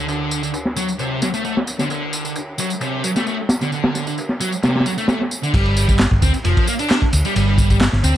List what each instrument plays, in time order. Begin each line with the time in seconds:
Already playing: fingered electric bass D2
0.08 distorted electric guitar D3, ride, tambourine
0.31 ride, tambourine
0.43 distorted electric guitar D3, tambourine
0.53 ride, tambourine
0.65 snare
0.76 distorted electric guitar F#3, ride, tambourine
0.88 tambourine
0.99 distorted electric guitar C3, ride, tambourine
1.22 distorted electric guitar F#3, snare, ride, tambourine
1.34 distorted electric guitar A3, tambourine
1.45 distorted electric guitar A3, open hi-hat, tambourine
1.57 snare
1.67 ride, tambourine
1.79 distorted electric guitar D3, snare, tambourine
1.90 distorted electric guitar D3, ride, tambourine
2.02 ride
2.13 ride, tambourine
2.25 distorted electric guitar D3, tambourine
2.36 ride, tambourine
2.58 distorted electric guitar F#3, ride, tambourine
2.70 tambourine
2.81 distorted electric guitar C3, ride, tambourine
3.04 distorted electric guitar F#3, ride, tambourine
3.16 distorted electric guitar A3, snare, tambourine
3.26 distorted electric guitar A3, ride, tambourine
3.49 snare, ride, tambourine
3.61 distorted electric guitar D3, snare, tambourine
3.72 distorted electric guitar D3, ride, tambourine
3.84 snare, ride
3.95 snare, tambourine
4.07 distorted electric guitar D3, ride, tambourine
4.18 ride, tambourine
4.29 snare
4.40 distorted electric guitar F#3, ride, tambourine
4.52 tambourine
4.62 distorted electric guitar C3, snare, ride, tambourine
4.69 snare, ride
4.75 snare, ride
4.80 snare, ride
4.86 distorted electric guitar F#3, ride, tambourine
4.98 distorted electric guitar A3, ride, tambourine
5.08 distorted electric guitar A3, snare, ride, tambourine
5.21 snare
5.31 tambourine
5.43 distorted electric guitar D3, tambourine
5.54 fingered electric bass G1, distorted electric guitar G3, kick, crash, ride, tambourine
5.66 ride
5.77 ride, tambourine
5.88 distorted electric guitar G3, kick, tambourine
5.99 snare, clap, ride, tambourine
6.11 fingered electric bass G1, kick
6.22 fingered electric bass D2, distorted electric guitar C4, kick, ride, tambourine
6.34 ride, tambourine
6.45 fingered electric bass F1, distorted electric guitar F3, ride, tambourine
6.57 kick, ride
6.67 distorted electric guitar A#3, ride, tambourine
6.79 distorted electric guitar D4, ride, tambourine
6.90 distorted electric guitar D4, snare, clap, ride, tambourine
7.02 kick
7.13 fingered electric bass D2, ride, tambourine
7.25 distorted electric guitar G3, tambourine
7.36 fingered electric bass G1, distorted electric guitar G3, ride, tambourine
7.58 kick, ride, tambourine
7.70 distorted electric guitar G3, kick, tambourine
7.81 snare, clap, ride, tambourine
7.93 fingered electric bass G1, snare
8.03 fingered electric bass D2, distorted electric guitar C4, ride, tambourine